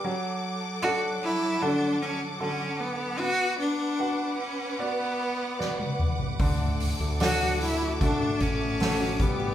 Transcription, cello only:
\new Staff \with { instrumentName = "Cello" } { \time 4/4 \key d \major \tempo 4 = 76 r4 fis'8 e'8 d'8 cis'8 cis'8 b8 | fis'8 d'4 cis'8 b4. r8 | r4 fis'8 e'8 d'8 cis'4 b8 | }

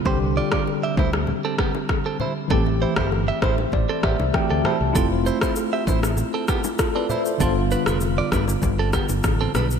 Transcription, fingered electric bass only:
\new Staff \with { instrumentName = "Fingered electric bass" } { \clef bass \time 4/4 \key c \major \tempo 4 = 98 c,8. r8. d,8. r4. r16 | a,,8. g,,8. a,,8 a,,16 r16 a,,16 c,16 r16 d,16 r16 c,16 | f,,8. r8. a,,8. r4. r16 | g,,8. f,,8. g,,8 g,,8. g,,16 a,,8 b,,8 | }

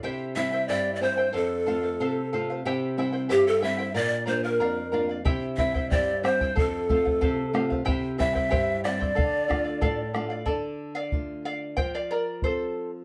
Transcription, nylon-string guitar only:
\new Staff \with { instrumentName = "Nylon-string guitar" } { \time 2/4 \key c \mixolydian \tempo 4 = 92 c8 <g c' e'>8 g,8 <g c' e'>8 | f,8 <a c' f'>8 c8 <a c' f'>8 | c8 <g c' e'>8 g,8 <g c' e'>8 | bes,8 <bes d' f'>8 f,8 <bes d' f'>8 |
c8 <g c' e'>8 g,8 <g c' e'>8 | f,8 <a c' f'>8 c8 <a c' f'>8 | c8 <g c' e'>8 g,8 <g c' e'>8 | d8 <a d' f'>8 a,8 <a d' f'>8 |
d4 <a d' f'>4 | f4 <c' f' a'>4 | }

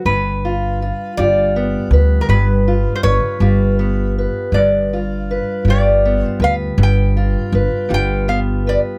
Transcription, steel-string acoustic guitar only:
\new Staff \with { instrumentName = "Steel-string acoustic guitar" } { \time 12/8 \key g \mixolydian \tempo 4. = 54 << { r8 f'8 f'8 f'8 b8 b'4 f'8 b'8 f'8 b8 b'8 | r8 f'8 b'8 f'8 b8 b'4 f'8 b'8 f'8 b8 b'8 | } \\ { g,4. g4. g,4. g4. | g,4. g4. g,4. g4. | } >> }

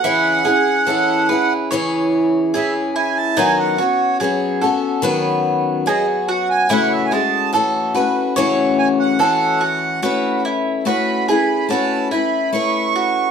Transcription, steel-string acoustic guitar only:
\new Staff \with { instrumentName = "Steel-string acoustic guitar" } { \time 4/4 \key a \lydian \tempo 4 = 72 <cis e cis' e' gis'>8 <cis' e' gis'>8 <e cis' e' gis'>8 <cis' e' gis'>8 <cis e cis' e' gis'>4 <e cis' e' gis'>4 | <dis fis b cis' fis'>8 <b cis' fis'>8 <fis b cis' fis'>8 <b cis' fis'>8 <dis fis b cis' fis'>4 <fis b cis' fis'>4 | <cis e a cis' fis'>8 <a cis' fis'>8 <e a cis' fis'>8 <a cis' fis'>8 <cis e a cis' fis'>4 <e a cis' fis'>4 | <a cis' e' b'>4 <a cis' e' b'>8 <cis' e' b'>8 <a cis' e' b'>8 <cis' e' b'>8 <a cis' e' b'>4 | }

